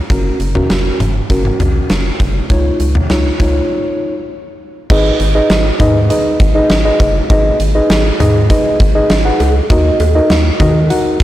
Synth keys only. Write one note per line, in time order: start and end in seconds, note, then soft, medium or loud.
0.10 0.38 C#4 medium
0.10 0.38 F#4 medium
0.10 0.38 A#4 medium
0.55 1.01 C#4 medium
0.55 1.01 F#4 medium
0.55 1.01 A#4 medium
1.30 2.04 C#4 medium
1.30 2.04 F#4 medium
1.30 2.04 A#4 medium
2.50 2.87 D#4 medium
2.50 2.87 F4 medium
2.50 2.87 C#5 medium
3.10 3.28 D#4 medium
3.10 3.28 F4 medium
3.10 3.28 C#5 medium
3.40 4.14 D#4 medium
3.40 4.14 F4 medium
3.40 4.14 C#5 medium
4.90 5.18 D#4 medium
4.90 5.18 G#4 medium
4.90 5.18 B4 medium
4.90 5.18 D#5 medium
5.35 5.63 D#4 medium
5.35 5.63 G#4 medium
5.35 5.63 B4 medium
5.35 5.63 D#5 medium
5.80 5.98 D#4 medium
5.80 5.98 G#4 medium
5.80 5.98 B4 medium
5.80 5.98 D#5 loud
6.10 6.38 D#4 medium
6.10 6.38 G#4 medium
6.10 6.38 B4 medium
6.10 6.38 D#5 loud
6.55 6.73 D#4 medium
6.55 6.73 G#4 medium
6.55 6.73 B4 medium
6.55 6.73 D#5 loud
6.85 7.13 D#4 medium
6.85 7.13 G#4 medium
6.85 7.13 B4 medium
6.85 7.13 D#5 medium
7.30 7.58 D#4 medium
7.30 7.58 G#4 medium
7.30 7.58 B4 medium
7.30 7.58 D#5 loud
7.75 8.03 D#4 medium
7.75 8.03 G#4 medium
7.75 8.03 B4 medium
7.75 8.03 D#5 loud
8.20 8.38 D#4 medium
8.20 8.38 G#4 medium
8.20 8.38 B4 medium
8.20 8.38 D#5 loud
8.50 8.78 D#4 medium
8.50 8.78 G#4 medium
8.50 8.78 B4 medium
8.50 8.78 D#5 loud
8.95 9.13 D#4 medium
8.95 9.13 G#4 medium
8.95 9.13 B4 medium
8.95 9.13 D#5 loud
9.25 9.53 D#4 medium
9.25 9.53 G#4 medium
9.25 9.53 B4 medium
9.25 9.53 F#5 loud
9.70 9.98 D#4 medium
9.70 9.98 F#4 medium
9.70 9.98 A#4 medium
9.70 9.98 D#5 medium
10.15 10.43 D#4 medium
10.15 10.43 F#4 medium
10.15 10.43 A#4 medium
10.15 10.43 D#5 loud
10.60 10.78 D#4 medium
10.60 10.78 F#4 medium
10.60 10.78 A#4 medium
10.60 10.78 D#5 loud
10.90 11.18 D#4 medium
10.90 11.18 F#4 medium
10.90 11.18 A#4 medium
10.90 11.18 F#5 loud